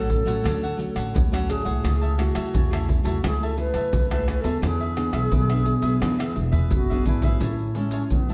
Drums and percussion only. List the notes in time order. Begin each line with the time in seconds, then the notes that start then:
0.10 pandeiro, maracas, surdo
0.27 pandeiro, maracas
0.46 pandeiro, tamborim, maracas, surdo
0.64 pandeiro, maracas
0.79 pandeiro, maracas
0.96 pandeiro, tamborim, maracas
1.16 pandeiro, maracas, surdo
1.34 pandeiro, tamborim, maracas
1.50 pandeiro, tamborim, maracas
1.66 pandeiro, maracas
1.85 pandeiro, tamborim, maracas, surdo
2.02 pandeiro, maracas
2.19 pandeiro, tamborim
2.35 pandeiro, tamborim, maracas
2.54 pandeiro, maracas, surdo
2.73 pandeiro, tamborim, maracas
2.89 pandeiro, surdo
3.05 pandeiro, maracas
3.24 pandeiro, tamborim, maracas, surdo
3.43 pandeiro, maracas
3.58 pandeiro, maracas
3.74 pandeiro, tamborim, maracas
3.93 pandeiro, maracas, surdo
4.11 pandeiro, tamborim, maracas
4.28 pandeiro, tamborim, maracas
4.44 pandeiro, maracas
4.63 pandeiro, tamborim, maracas, surdo
4.80 pandeiro, maracas
4.97 pandeiro, tamborim, maracas
5.13 pandeiro, tamborim, maracas
5.32 pandeiro, maracas, surdo
5.50 pandeiro, tamborim, maracas
5.66 pandeiro, maracas
5.82 pandeiro, maracas
6.02 pandeiro, tamborim, maracas, surdo
6.20 pandeiro, tamborim, maracas
6.36 pandeiro
6.53 surdo, pandeiro, maracas
6.71 pandeiro, maracas, surdo
6.90 pandeiro, maracas, surdo
7.06 pandeiro, maracas, surdo
7.22 pandeiro, maracas, surdo
7.41 pandeiro, maracas, surdo
7.59 pandeiro, maracas
7.75 pandeiro
7.91 pandeiro, maracas
8.10 pandeiro, maracas, surdo
8.29 pandeiro, maracas